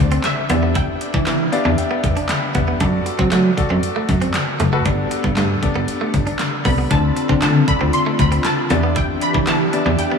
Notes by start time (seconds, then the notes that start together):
Already playing: C4 D4 F4 A4 D5, impact
0.00 D2
0.11 C4, closed hi-hat
0.24 E5, muted clean electric guitar stroke, snare, clap, closed hi-hat
0.49 E2 B3 D4 E4 G4 D5, closed hi-hat
0.63 B3
0.75 E4 G5, kick, closed hi-hat
1.01 muted clean electric guitar stroke, closed hi-hat
1.14 E3 D4, kick
1.27 E3 B3, snare, clap, closed hi-hat
1.52 B3 D4 E4 G4 D5 F5, muted clean electric guitar stroke, closed hi-hat
1.65 E2 D4
1.78 G5, closed hi-hat
1.91 B3
2.04 E1 G5, muted clean electric guitar stroke, kick, closed hi-hat
2.17 D4, closed hi-hat
2.29 B5, muted clean electric guitar stroke, snare, clap, closed hi-hat
2.55 E2 B3 D4 E4 G4 B4, kick, closed hi-hat
2.68 B3
2.80 F#2 D4 F#4 A4 D5, kick, closed hi-hat
3.06 muted clean electric guitar stroke, closed hi-hat
3.19 F#3 C4, kick
3.32 F#3 A3, snare, clap, closed hi-hat
3.57 F#4 A4 D5, muted clean electric guitar stroke, kick, closed hi-hat
3.70 F#2 C4
3.83 closed hi-hat
3.96 A3
4.09 F#2, muted clean electric guitar stroke, kick, closed hi-hat
4.21 C4, closed hi-hat
4.34 muted clean electric guitar stroke, snare, clap, closed hi-hat
4.60 F#1 A3, closed hi-hat
4.73 A3 F#4 A4 B4
4.85 G1 B3 D4 G4 A4 D5, kick, closed hi-hat
5.11 muted clean electric guitar stroke, closed hi-hat
5.24 G2 B3, kick
5.37 G2 A3, snare, clap, closed hi-hat
5.62 B3 D4 G4 A4 D5, muted clean electric guitar stroke, kick, closed hi-hat
5.75 G1 B3
5.88 closed hi-hat
6.01 A3
6.14 G1, muted clean electric guitar stroke, kick, closed hi-hat
6.27 D4, closed hi-hat
6.39 muted clean electric guitar stroke, snare, clap, closed hi-hat
6.65 C2 B3 D4 G4 A4 D5 B5, kick, open hi-hat
6.78 B3
6.91 D2 D3 C4 D4 F4 A4 D5 A5, kick, closed hi-hat
7.16 muted clean electric guitar stroke, closed hi-hat
7.29 D3 C4, kick
7.42 D3 A3 A5, snare, clap, closed hi-hat
7.68 C4 D4 F4 A4 D5 B5, muted clean electric guitar stroke, kick, closed hi-hat
7.80 D2 C4
7.93 C6, closed hi-hat
8.06 A3
8.19 D2 B5, muted clean electric guitar stroke, kick, closed hi-hat
8.32 C4, closed hi-hat
8.44 A5, muted clean electric guitar stroke, snare, clap, closed hi-hat
8.70 E2 E3 B3 D4 E4 G4 D5, closed hi-hat
8.83 B3
8.96 E4 G5, kick, closed hi-hat
9.21 B5, muted clean electric guitar stroke, closed hi-hat
9.34 E3 D4, kick
9.47 E3 B3 A5, snare, clap, closed hi-hat
9.73 B3 D4 E4 G4 D5, muted clean electric guitar stroke, closed hi-hat
9.86 E2 D4
9.99 G5, closed hi-hat
10.12 B3